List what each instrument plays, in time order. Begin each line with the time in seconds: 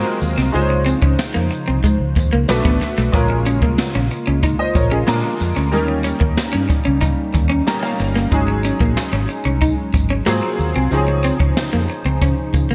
Already playing: analog synth pad C3 F#3 A#3 F5, grand piano G#3 C4 F4 F#4 A#4
0.05 muted clean electric guitar stroke
0.21 fingered electric bass D#2, open hi-hat, tambourine
0.38 fingered electric bass C2, clean electric guitar C4, snare
0.52 fingered electric bass C#2, analog synth pad C#3 F3 D#4 C5, grand piano G#3 C#4 D#4 F4 C5, closed hi-hat
0.70 muted clean electric guitar stroke
0.86 clean electric guitar C4, closed hi-hat, tambourine
1.02 fingered electric bass C#2, clean electric guitar C#4, kick
1.19 snare, closed hi-hat, tambourine
1.34 fingered electric bass F2, clean electric guitar A#3
1.51 muted clean electric guitar stroke, closed hi-hat, tambourine
1.68 fingered electric bass C2, clean electric guitar C4
1.83 clean electric guitar G#3, kick, closed hi-hat, tambourine
2.00 fingered electric bass C#2
2.16 fingered electric bass D#2, muted clean electric guitar stroke, kick, closed hi-hat, tambourine
2.33 fingered electric bass C#2, clean electric guitar A#3
2.47 fingered electric bass B1, analog synth pad D3 A3 B3 F#4, grand piano A3 B3 D4 F#4 B4, snare, closed hi-hat, tambourine
2.65 fingered electric bass A1, clean electric guitar B3, kick
2.80 muted clean electric guitar stroke, snare, open hi-hat, tambourine
2.97 fingered electric bass B1, clean electric guitar A3, snare
3.12 fingered electric bass A#1, analog synth pad C#3 G#3 A#3 F4, grand piano G#3 A#3 C#4 F4 A#4, kick, closed hi-hat, tambourine
3.30 muted clean electric guitar stroke
3.45 clean electric guitar C#4, closed hi-hat, tambourine
3.62 fingered electric bass C2, clean electric guitar A#3, kick
3.78 snare, closed hi-hat, tambourine
3.95 fingered electric bass A#1, clean electric guitar C#4
4.10 muted clean electric guitar stroke, closed hi-hat, tambourine
4.27 fingered electric bass C#2, clean electric guitar C#4
4.43 clean electric guitar D#4, kick, closed hi-hat, tambourine
4.59 grand piano C5 D#5
4.75 fingered electric bass A#1, grand piano A#4 C#5, muted clean electric guitar stroke, kick, closed hi-hat, tambourine
4.91 clean electric guitar C#4, grand piano F4 G#4
5.07 fingered electric bass A#2, analog synth pad D3, grand piano G#3 A#3 D4 F4 A#4, clean electric guitar A#3, snare, closed hi-hat, tambourine
5.24 muted clean electric guitar stroke
5.39 fingered electric bass F2, snare, open hi-hat, tambourine
5.56 fingered electric bass D2, clean electric guitar C#4, snare
5.71 fingered electric bass D#2, grand piano G3 A#3 C#4 D#4 A#4, analog synth pad G3 C#4 D#4, closed hi-hat, tambourine
5.88 muted clean electric guitar stroke
6.04 clean electric guitar C#4, closed hi-hat, tambourine
6.20 fingered electric bass D#2, clean electric guitar A#3, kick
6.37 snare, closed hi-hat, tambourine
6.53 fingered electric bass G2, clean electric guitar C#4
6.69 muted clean electric guitar stroke, kick, closed hi-hat, tambourine
6.85 fingered electric bass C#2, clean electric guitar C#4
7.01 clean electric guitar D#4, kick, closed hi-hat, tambourine
7.34 fingered electric bass D#2, muted clean electric guitar stroke, kick, closed hi-hat, tambourine
7.50 clean electric guitar C#4
7.67 grand piano G3 A#3 C#4 D#4 A#4 A#5, snare, closed hi-hat, tambourine
7.83 clean electric guitar A#3, grand piano F5, snare
7.99 fingered electric bass G1, muted clean electric guitar stroke, snare, open hi-hat, tambourine
8.16 clean electric guitar A#3, snare
8.31 fingered electric bass G#1, grand piano F#3 G#3 C#4 D#4 G#4, analog synth pad F#3 G#3, kick, closed hi-hat, tambourine
8.48 muted clean electric guitar stroke
8.64 clean electric guitar C#4, closed hi-hat, tambourine
8.80 fingered electric bass A#1, clean electric guitar A#3, kick
8.96 snare, closed hi-hat, tambourine
9.13 fingered electric bass G#1, clean electric guitar C#4
9.29 muted clean electric guitar stroke, closed hi-hat, tambourine
9.45 fingered electric bass C2, clean electric guitar C#4
9.61 clean electric guitar D#4, kick, closed hi-hat, tambourine
9.94 fingered electric bass G#1, muted clean electric guitar stroke, kick, closed hi-hat, tambourine
10.10 clean electric guitar C#4
10.25 fingered electric bass G#2, analog synth pad C3 A#3 F4, grand piano F#3 A#3 C4 F4 G#4, clean electric guitar A#3, snare, closed hi-hat, tambourine
10.43 muted clean electric guitar stroke
10.58 fingered electric bass D#2, open hi-hat, tambourine
10.76 fingered electric bass C2, clean electric guitar C4
10.90 fingered electric bass C#2, analog synth pad C#3 F3 D#4 C5, grand piano F3 C4 C#4 D#4 G#4, closed hi-hat, tambourine
11.08 muted clean electric guitar stroke
11.23 clean electric guitar C4, closed hi-hat, tambourine
11.40 fingered electric bass C#2, clean electric guitar C#4, kick
11.57 snare, closed hi-hat, tambourine
11.73 fingered electric bass F2, clean electric guitar A#3
11.89 muted clean electric guitar stroke, closed hi-hat
12.05 fingered electric bass C#2, clean electric guitar C4
12.21 fingered electric bass C#3, clean electric guitar C#4, kick, closed hi-hat, tambourine
12.54 fingered electric bass C#3, muted clean electric guitar stroke, kick, closed hi-hat, tambourine
12.70 fingered electric bass C#2, clean electric guitar A#3